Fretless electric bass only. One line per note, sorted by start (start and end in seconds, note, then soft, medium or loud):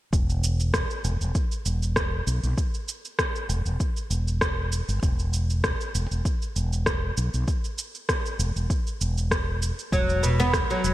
0.13 0.82 E1 medium
1.04 1.16 E1 medium
1.21 1.31 E1 medium
1.66 2.20 E1 medium
2.27 2.39 B1 medium
2.43 2.53 B1 medium
3.49 3.61 E1 medium
3.66 3.76 E1 medium
4.10 4.80 E1 medium
4.88 4.98 G1 medium
5.03 5.72 E1 medium
5.95 6.06 E1 medium
6.11 6.21 E1 medium
6.56 7.10 E1 medium
7.17 7.29 B1 medium
7.34 7.44 B1 medium
8.39 8.51 E1 medium
8.56 8.66 E1 medium
9.01 9.70 E1 medium
9.92 10.62 E1 medium
10.84 10.94 E1 medium